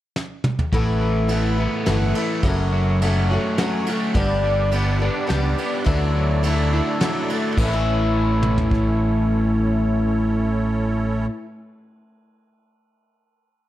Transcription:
0.16 snare
0.44 mid tom
0.59 floor tom
0.73 A1 A2 E3 A3 B3 E4, kick, ride
1.01 E3
1.28 E3 A3 B3 E4, ride
1.58 A3 B3 E4
1.86 G1 E3 A3 B3 E4, snare, ride
2.15 A3 B3 E4, ride
2.43 F#1 F#2 C#3 F#3 A3 C#4 F#4, kick, ride
2.72 F#3
3.01 F#3 A3 C#4 F#4, ride
3.31 F#3 A3 C#4 F#4
3.58 F#3 A3 C#4, snare, ride
3.62 F#4
3.86 F#3 A3 C#4 F#4, ride
4.14 G1 G2 D3 G3 B3 D4 G4 B4 D5, kick, ride
4.44 G3
4.72 G3 B3 D4 G4, ride
4.99 G3 B3 D4 G4
5.27 C#2 G3 B3 D4 G4, snare, ride
5.58 B3, ride
5.84 D2 D3 F#3 A3 D4 E4, kick, ride
5.89 E4 F#4 A4 D5
6.15 F#3
6.43 F#3 A3 D4 E4, ride
6.73 A3 D4 E4
7.00 F#3 A3 D4 E4, snare, ride
7.29 A3 D4 E4, ride
7.53 A2
7.57 A1 A2 E3 A3 C#4 E4 A4 C#5, kick, crash
7.63 A3
7.68 C#4
7.73 E4
8.43 mid tom
8.58 floor tom
8.71 kick

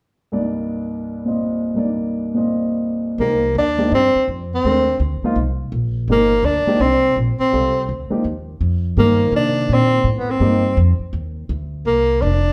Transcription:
0.32 C2 G2 A#3 D#4 D5
1.25 A#2 C4 F4 D#5
1.74 C2 G2 A#3 D#4
1.79 D5
2.34 A#2 C4 F4 D#5
3.18 C2 F3 A#3 D#4 G4
3.55 D#2 D4
3.78 F3 A#3 D#4 G4
3.92 G2 C4
4.16 muted upright bass stroke
4.28 F2
4.54 C4
4.65 D#2 A3 D4 G4 A#4
5.00 D2
5.22 F3 A#3 D#4 F4, muted upright bass stroke
5.36 C2
5.72 A#1
6.08 G1 F3 A#3 D#4 G4
6.12 A#3
6.43 D2 D4
6.66 F3 A#3 D#4 G4, muted upright bass stroke
6.80 C2 C4
7.16 A#1
7.39 C4, muted upright bass stroke
7.52 C2 G3 C4 F4 A4
7.89 D2
8.10 F3 A#3 D#4 G4, muted upright bass stroke
8.24 D#2
8.61 F2
8.97 G2 D#3 F3 A#3 G4
9.32 C3 D4
9.69 A#2
9.74 C4
10.04 A2
10.18 B3
10.31 C4
10.40 G2 F3 A#3 D#4 G4
10.77 F2
10.99 muted upright bass stroke
11.13 D#2
11.49 D2
11.85 C2 A#3
12.22 F1 D4

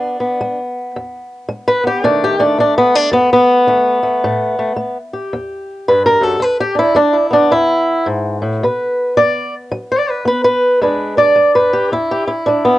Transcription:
Already playing: E2 B3 D4
0.20 B3
0.41 G#3
0.96 E2
1.49 G#3
1.68 B4
1.84 B3 G4
2.04 B2 D#3 A3 D4
2.24 G4
2.39 A3 D4
2.58 D#3 D4
2.78 B3
2.95 D4
3.12 F#2 B3
3.33 B3
3.67 D#3 A3
4.03 A3
4.24 A2 A3
4.59 A3
4.76 A3
5.13 G4
5.33 E2
5.88 G2 B4
6.06 A#4
6.21 F#2 A4
6.40 E2 B4
6.60 G4
6.75 D4 E4
6.95 G#3 D4
7.13 E4
7.31 B3 D4
7.51 E2 E4
8.06 G#2
8.42 A2
8.63 B2 B4
9.17 B3 D5
9.72 F#3
9.92 D5
10.10 B4
10.25 B3 B4
10.44 B4
10.81 E2 G#3 D4 B4
11.17 D4 D5
11.36 G#3
11.55 B4
11.73 G4
11.92 E2 E4
12.11 G4
12.27 E4
12.46 G#3 D4
12.65 B3

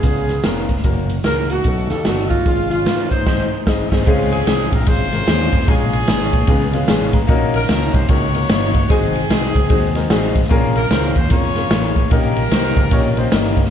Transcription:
Already playing: B3 F4 G#4
0.03 C#2 C#3 B3 C#4 F4 G#4, kick, closed hi-hat
0.29 snare, closed hi-hat
0.43 F1 B3 C#4 F4 A#4, snare, closed hi-hat
0.69 kick, closed hi-hat
0.77 snare
0.83 F#1 A#3 C#4 F#4 A#4, kick, closed hi-hat
1.09 closed hi-hat
1.23 C#2 A#3 C#4 F#4 G#4 A#4, snare, closed hi-hat
1.50 A3 D#4 F#4, closed hi-hat
1.64 B1 B2 B3 C#4 D#4 A4, kick, closed hi-hat
1.90 D#2 A4, snare, closed hi-hat
2.05 G1 A3 B3 C#4 D#4 F#4 A4, snare, closed hi-hat
2.30 F4, kick, closed hi-hat
2.45 G#1 G#2 G#3 C#4 F4 G#4, kick, closed hi-hat
2.70 G#3 C#4 F4, closed hi-hat
2.85 G#2 G#3 C#4 F4 A#4, snare, closed hi-hat
3.10 D#4 G#4 C5, kick, closed hi-hat
3.26 G#1 G#2 G#3 C4 D#4 G#4, kick, snare, crash
3.66 G#1 G#3 C4 D#4 G#4, kick, snare
3.91 G#1 G#3 C4 D#4 G#4, kick, snare, crash
4.06 C#2 C#3 G#3 C4 C#4 F4 G#4, kick, crash
4.32 C4 F4 G#4, ride
4.46 C2 G#3 C4 C#4 F4 G#4, snare, ride
4.72 A#1 A#4, kick, ride
4.87 G#1 G#3 C4 C#4 F4 G#4 C5, kick, ride
5.11 G#3 C4 C#4 F4 A#4, snare, ride
5.26 D#2 G#3 C4 C#4 F4 G#4, snare, ride
5.52 F2, kick, ride
5.61 snare
5.67 A#1 A#2 G#3 A#3 C#4 F4 G#4, kick, ride
5.93 ride
6.07 G#1 G#3 A#3 C#4 F4 G#4, snare, ride
6.33 A#1, kick, ride
6.47 C#2 C#3 G#3 B3 C#4 F4 G#4, kick, ride
6.72 G#3 B3 C#4 F4 G#4 F5, ride
6.88 A1 G#3 B3 C#4 F4 G#4 G#5, snare, ride
7.13 A#5, kick, ride
7.27 A#1 A#2 A#3 C#4 D#4 F#4 A#4, kick, ride
7.54 C#4 D#4 A#4, ride
7.68 C#2 A#3 C#4 D#4 F#4 A#4, snare, ride
7.94 C2 C5, kick, ride
8.08 C#2 A#3 C#4 D#4 F#4 A#4 C#5, kick, ride
8.33 A#3 C#4 D#4 F#4 A#4, ride
8.49 G1 A#3 C#4 D#4 F#4 C#5, snare, ride
8.74 kick, ride
8.89 G#1 G#2 G#3 C4 D#4 F#4 G#4, kick, ride
9.15 ride
9.29 C2 G#3 C4 D#4 F#4 G#4, snare, ride
9.55 C#2, kick, ride
9.69 D#2 G#3 C4 D#4 F#4 G#4, kick, ride
9.94 G#3 C4 D#4 F#4 A#4, snare, ride
10.10 A1 G#3 C4 D#4 F#4 G#4, snare, ride
10.36 kick, ride
10.44 snare
10.49 A#1 A#2 A#3 C#4 F4 G#4 A#4, kick, ride
10.76 C#4 F4 A#4, ride
10.90 C#2 A#3 C#4 F4 G#4 C5, snare, ride
11.16 D#2 C5, kick, ride
11.30 F2 A#3 C#4 F4 G#4 A#4 C#5, kick, ride
11.54 A#3 C#4 F4 G#4 A#4, snare, ride
11.70 A1 A#3 C#4 F4 G#4 A#4, snare, ride
11.96 kick, ride
12.10 A#1 A#2 A#3 C#4 D#4 G4 A#4, kick, ride
12.36 ride
12.50 C2 A#3 C#4 D#4 G4 C5, snare, ride
12.77 C#2, kick, ride
12.91 A#1 A#3 C#4 D#4 G4 C#5, kick, ride
13.16 A#3 C#4 D#4 G4 C5, ride
13.31 G1 A#3 C#4 D#4 G4 A#4, snare, ride
13.57 kick, ride
13.65 snare

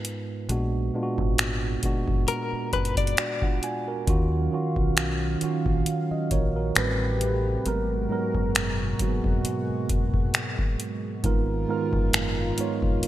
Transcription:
Already playing: G#2 G#3 B3 D#4 F4 B4
0.05 closed hi-hat
0.49 A#1 A#2 G#3 B3 D4 F#4, closed hi-hat
0.93 A#2 G#3 B3 D4 F4
1.03 F#4
1.18 G#1, kick
1.38 finger snap, closed hi-hat
1.83 A#2 G#3 B3 D4 F#4, kick, closed hi-hat
2.08 F#1, kick
2.28 A#4, closed hi-hat
2.53 muted fingered electric bass stroke
2.73 F#1 B4, kick, closed hi-hat
2.85 closed hi-hat
2.97 D5, kick, closed hi-hat
3.07 closed hi-hat
3.17 D4 F#4 D5, finger snap, closed hi-hat
3.42 D4 F4 F#5, kick
3.63 G#5, closed hi-hat
3.88 F#4 A#4
4.07 D#2 D#3 F#3 C#4 F4 F#4 F5, kick, closed hi-hat
4.52 D#3 C#4 F4 F#4
4.76 B1, kick
4.97 finger snap, closed hi-hat
5.41 D#3 C#4 F4 F#4, muted fingered electric bass stroke, closed hi-hat
5.66 A#1, kick
5.86 closed hi-hat
6.11 D#5, muted fingered electric bass stroke
6.31 A#1 A#4 C#5, kick, closed hi-hat
6.56 F#4 A#4
6.75 A1 A2 C3 G3 A3 C4 G4 B4, finger snap, closed hi-hat
7.21 closed hi-hat
7.65 G#1 G#2 B2 F#3 G#3 B3 F#4 A#4, closed hi-hat
8.09 G#2 F#3 B3 A#4
8.35 F#1, kick
8.55 finger snap, closed hi-hat
8.99 G#2 F#3 A#3 F#4, muted fingered electric bass stroke, kick, closed hi-hat
9.08 B3
9.24 F1, kick
9.45 F#3, closed hi-hat
9.69 muted fingered electric bass stroke
9.89 F1, kick, closed hi-hat
10.14 kick
10.34 finger snap, closed hi-hat
10.59 kick
10.80 closed hi-hat
11.23 G#1 G#2 D#3 G#3 B3 D#4 F4 A#4, kick, closed hi-hat
11.68 G#2 G#3 B3 D#4 F4 A#4
11.93 F#1, kick
12.13 finger snap, closed hi-hat
12.58 G#2 G#3 B3 D#4 F4 C#5, muted fingered electric bass stroke, closed hi-hat
12.82 F1, kick
13.03 closed hi-hat

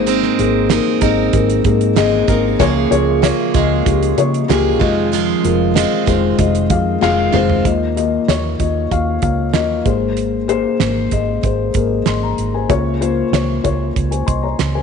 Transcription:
Already playing: G#1 G#2 A#3 G#4 C5
0.07 G#3 C4 D#4 A#4, closed hi-hat
0.23 snare
0.38 G#1 A#3 G#4 A#4, closed hi-hat
0.69 G#3 A#3 C4 D#4 G#4 A#4, snare, closed hi-hat
1.01 G#1 A#3 C4 D#4 G#4 A#4 D#5, kick, closed hi-hat
1.33 G#1 A#3 G#4 A#4, kick, closed hi-hat
1.50 closed hi-hat
1.64 G#2 A#3 G#4 A#4, kick, closed hi-hat
1.81 closed hi-hat
1.96 G#1 G#3 A#3 C4 D#4 G#4 A#4 D#5, snare, closed hi-hat
2.27 G#1 A#3 C4 D#4 G#4 A#4, kick, closed hi-hat
2.59 C#2 C#3 F3 G#3 A#3 F4 G#4 C#5, kick, closed hi-hat
2.90 C#2 A#3 F4 C#5, closed hi-hat
3.22 G#3 A#3 F4 G#4 C#5, snare, closed hi-hat
3.54 C#2 G#3 A#3 F4 G#4 D#5, kick, closed hi-hat
3.85 C#2 A#3 F4 G4, kick, closed hi-hat
4.03 closed hi-hat
4.17 C#3 A#3 F4 C#5, closed hi-hat
4.34 closed hi-hat
4.48 C#2 G#3 A#3 F4 G4 G#4, snare, closed hi-hat
4.79 F1 D#3 G#3 C4 F4 D#5, kick, crash
5.12 F2 D#3 F3 G#3 C4 F4, closed hi-hat
5.43 F1 G#3 F4 A#4, closed hi-hat
5.74 D#3 G#3 C4 F4 D#5, snare, closed hi-hat
6.06 F1 D#3 G#3 C4 F4 C5, kick, closed hi-hat
6.38 F1 G#3 F4 D#5, kick, closed hi-hat
6.55 closed hi-hat
6.69 F2 G#3 F4 F5, kick, closed hi-hat
7.01 F1 D#3 G#3 C4 F4 F5, snare
7.32 F1 D#3 G#3 C4 F4 C5, mid tom
7.50 floor tom
7.65 D#2 D#3 A#3 F4 D#5, kick, closed hi-hat
7.96 A#3 F4 D#5, closed hi-hat
8.28 D#2 A#3 F4 C#5, snare, closed hi-hat
8.59 D#2 A#3 F4 D#5, kick, closed hi-hat
8.90 D#2 A#3 F4 F5, kick, closed hi-hat
9.22 C#2 A#3 F4 F5, kick, closed hi-hat
9.53 D#2 A#3 F4 D#5, snare, closed hi-hat
9.85 G#1 G#2 A#3 G#4 C5, kick, closed hi-hat
10.17 closed hi-hat
10.48 A#3 G#4 C5, closed hi-hat
10.80 G#1 A#3 G#4 A#4, snare, closed hi-hat
11.11 G#1 A#3 G#4 D#5, kick, closed hi-hat
11.43 G#1 A#3 G#4 C5, kick, closed hi-hat
11.74 G#1 A#3 G#4 A#4, kick, closed hi-hat
12.06 G#1 D#5 C6, snare, closed hi-hat
12.23 A#5
12.38 G#1, closed hi-hat
12.54 C5 G#5
12.69 C#2 C#3 A#3 F4 C#5, kick, closed hi-hat
13.00 A#3 F4 C5, closed hi-hat
13.32 C#2 A#3 F4 C#5, snare, closed hi-hat
13.63 C#2 A#3 F4 C#5, kick, closed hi-hat
13.96 C#2, kick, closed hi-hat
14.11 C5 G#5, closed hi-hat
14.26 C2 D#5 C6, kick, closed hi-hat
14.43 C#5 A#5
14.59 C#2, snare, closed hi-hat
14.75 C5 G#5

